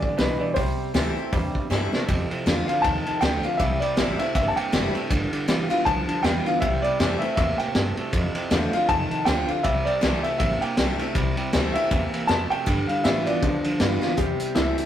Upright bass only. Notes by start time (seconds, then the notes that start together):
0.03 muted upright bass stroke
0.18 B1
0.40 muted upright bass stroke
0.56 C2
0.79 muted upright bass stroke
0.94 D2
1.33 E2
1.55 muted upright bass stroke
1.70 G2
1.92 muted upright bass stroke
2.09 F2
2.31 muted upright bass stroke
2.46 E2
2.68 muted upright bass stroke
2.84 D#2
3.06 muted upright bass stroke
3.22 D2
3.44 muted upright bass stroke
3.60 C2
3.98 A1
4.19 muted upright bass stroke
4.35 G1
4.57 muted upright bass stroke
4.72 F1
4.95 muted upright bass stroke
5.11 G1
5.32 muted upright bass stroke
5.48 A1
5.70 muted upright bass stroke
5.86 B1
6.08 muted upright bass stroke
6.24 E2
6.46 muted upright bass stroke
6.62 C2
6.84 muted upright bass stroke
7.00 F2
7.37 E2
7.60 muted upright bass stroke
7.75 G2
7.97 muted upright bass stroke
8.13 F2
8.35 muted upright bass stroke
8.51 E2
8.73 muted upright bass stroke
8.89 F2
9.11 muted upright bass stroke
9.27 D2
9.49 muted upright bass stroke
9.64 C2
10.03 B1
10.40 A1
10.62 muted upright bass stroke
10.78 B1
11.00 muted upright bass stroke
11.15 C2
11.38 muted upright bass stroke
11.54 D2
11.75 muted upright bass stroke
11.91 E2
12.13 muted upright bass stroke
12.29 F2
12.51 muted upright bass stroke
12.67 G2
12.89 muted upright bass stroke
13.05 A2
13.27 muted upright bass stroke
13.43 B2
13.65 muted upright bass stroke
13.80 G2
14.18 E2
14.40 muted upright bass stroke
14.56 C2
14.78 muted upright bass stroke